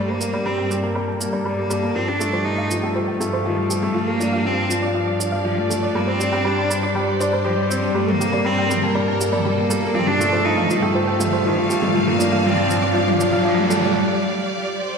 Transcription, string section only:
0.00 7.94 G3 medium
0.00 11.96 G4 medium
0.00 0.76 C5 medium
0.00 0.76 D5 medium
0.41 4.76 A4 medium
0.88 1.97 A#4 medium
2.87 6.76 F5 medium
4.36 8.76 D5 medium
6.42 8.75 C5 medium
7.95 14.98 G3 medium
8.24 12.75 A4 medium
8.24 9.95 A#4 medium
10.40 14.75 F5 medium
12.15 14.98 G4 medium
12.20 14.98 D5 medium
14.82 14.98 C5 medium

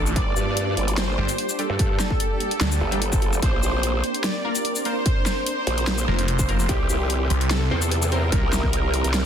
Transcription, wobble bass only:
0.16 0.35 G1 medium
0.36 0.76 G2 loud
0.77 1.16 G1 loud
1.70 1.98 G2 loud
2.81 3.23 G1 medium
3.23 3.41 F#1 medium
3.42 3.61 A#1 loud
3.63 4.02 A#1 medium
5.67 6.06 A#1 loud
6.69 6.88 C2 loud
6.90 7.29 C2 loud
7.71 8.31 E2 loud
8.43 9.03 C2 loud
9.04 9.23 C2 loud

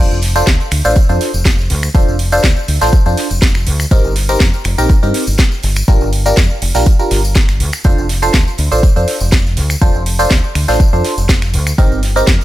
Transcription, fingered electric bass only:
0.11 0.42 F1 medium
0.47 0.56 D2 loud
0.72 0.81 D2 medium
0.85 0.93 A1 medium
1.09 1.17 F2 medium
1.34 1.71 F1 medium
1.70 1.88 D2 medium
1.95 2.04 F1 medium
2.08 2.38 F1 medium
2.44 2.53 D2 loud
2.68 2.77 D2 medium
2.81 2.89 A1 medium
3.06 3.14 F2 medium
3.31 3.68 F1 medium
3.67 3.84 D2 medium
3.91 4.00 G1 loud
4.04 4.35 G1 medium
4.40 4.50 F2 loud
4.65 4.74 F1 medium
4.78 4.86 A#1 medium
5.03 5.11 G2 medium
5.27 5.35 G1 medium
5.64 5.81 G1 medium
5.88 5.97 G1 loud
6.01 6.32 G1 medium
6.37 6.46 F2 loud
6.62 6.71 F1 medium
6.75 6.83 A#1 medium
7.11 7.62 G1 medium
7.60 7.69 D2 medium
7.85 7.94 F1 medium
7.98 8.28 F1 medium
8.34 8.43 D2 loud
8.59 8.68 D2 medium
8.72 8.80 A1 medium
8.96 9.04 F2 medium
9.21 9.58 F1 medium
9.57 9.75 D2 medium
9.82 9.91 F1 medium
9.95 10.25 F1 medium
10.31 10.40 D2 loud
10.55 10.64 D2 medium
10.68 10.76 A1 medium
10.93 11.01 F2 medium
11.18 11.55 F1 medium
11.54 11.71 D2 medium
11.78 11.87 G1 loud
11.91 12.22 G1 medium
12.28 12.37 F2 loud

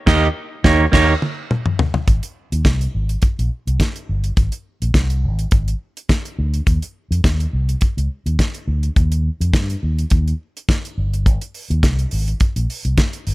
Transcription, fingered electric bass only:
0.07 0.27 D#2 loud
0.65 0.84 D#2 loud
0.94 1.13 D#2 loud
2.08 2.19 G#1 medium
2.52 2.62 D#2 medium
2.65 2.86 C2 medium
2.95 3.15 G#1 medium
3.39 3.48 A#1 medium
3.67 3.77 C2 medium
4.09 4.30 G1 medium
4.38 4.48 G#1 medium
4.82 4.91 A#1 medium
4.95 5.25 C2 medium
5.24 5.44 G#1 medium
5.52 5.73 G#1 medium
6.39 6.59 D2 medium
6.67 6.78 D#2 medium
7.11 7.20 F2 medium
7.24 7.45 D#2 medium
7.53 7.74 C2 medium
7.97 8.07 C#2 medium
8.26 8.35 D#2 medium
8.67 8.88 D2 medium
8.97 9.28 D#2 medium
9.40 9.50 F2 medium
9.54 9.74 G2 medium
9.83 10.03 D#2 medium
10.12 10.32 D#2 medium
10.98 11.27 G1 medium
11.27 11.37 G#1 medium
11.70 11.80 D#2 medium
11.83 12.04 C2 medium
12.13 12.33 G#1 medium
12.56 12.66 A#1 medium
12.85 12.94 C2 medium
13.27 13.34 G1 medium

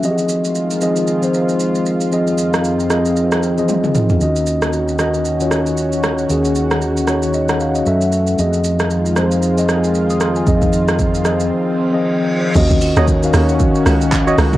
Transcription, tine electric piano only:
0.03 0.68 F3 medium
0.03 0.68 C4 medium
0.03 0.11 G4 medium
0.03 0.68 D#5 loud
0.11 0.71 G#4 medium
0.81 1.14 F3 medium
0.81 1.14 C4 medium
0.81 1.14 G#4 medium
0.81 1.15 D#5 medium
1.22 1.95 F3 medium
1.22 1.95 C4 medium
1.22 1.96 G#4 medium
1.22 1.96 C5 medium
2.12 2.76 F3 medium
2.12 2.77 C4 medium
2.12 2.77 G#4 medium
2.12 2.77 D#5 medium
2.90 3.42 F3 medium
2.90 3.43 C4 medium
2.90 3.43 G#4 medium
2.90 3.43 D#5 medium
3.58 3.63 E3 medium
3.58 4.10 C4 medium
3.58 4.10 G#4 medium
3.58 4.11 D#5 medium
3.64 4.13 F3 medium
4.21 4.85 D#3 medium
4.21 4.85 C#4 medium
4.21 4.86 F#4 medium
4.21 4.86 D#5 medium
4.99 5.31 D#3 medium
4.99 5.31 C#4 medium
4.99 5.32 F#4 medium
4.99 5.32 D#5 medium
5.40 6.13 D#3 medium
5.40 6.13 C#4 medium
5.40 5.46 F4 medium
5.40 6.13 C#5 medium
5.48 6.16 F#4 medium
6.29 6.94 D#3 medium
6.29 6.94 C#4 medium
6.29 6.94 F#4 medium
6.29 6.95 G#4 loud
7.08 7.60 D#3 medium
7.08 7.60 C#4 medium
7.08 7.60 F#4 medium
7.08 7.61 C#5 medium
7.34 7.48 D#5 medium
7.50 7.60 F#5 medium
7.61 7.75 F5 medium
7.76 8.00 D#5 medium
7.86 8.29 F#3 medium
7.86 8.30 C#4 medium
7.86 8.30 A4 medium
7.86 8.30 E5 loud
8.38 9.02 F3 medium
8.38 9.03 C4 medium
8.38 9.03 G#4 medium
8.38 9.03 D#5 medium
9.16 9.48 F3 medium
9.16 9.49 C4 medium
9.16 9.49 G#4 medium
9.16 9.49 C5 medium
9.57 10.30 F3 medium
9.57 10.30 C4 medium
9.57 10.30 G#4 medium
9.57 10.31 D#5 medium
10.10 10.21 D#6 medium
10.21 10.36 C6 medium
10.37 10.61 G#5 medium
10.47 10.54 D#3 medium
10.47 11.11 C4 medium
10.47 11.12 G#4 medium
10.47 11.12 D#5 medium
10.53 11.14 F3 medium
11.25 11.77 F3 medium
11.25 11.78 C4 medium
11.25 11.78 G#4 medium
11.25 11.78 D#5 medium
11.92 12.45 F3 medium
11.92 12.45 C4 medium
11.92 12.45 G#4 medium
11.92 12.45 D#5 loud
12.55 12.88 D#3 loud
12.55 12.88 C#4 medium
12.55 12.88 F#4 medium
12.55 12.88 D#5 loud
12.97 13.17 D#3 medium
12.97 13.17 C#4 medium
12.97 13.17 F#4 medium
12.97 13.18 C#5 loud
13.23 14.06 D#3 medium
13.23 14.06 C#4 medium
13.23 14.06 F#4 medium
13.23 14.06 F5 loud

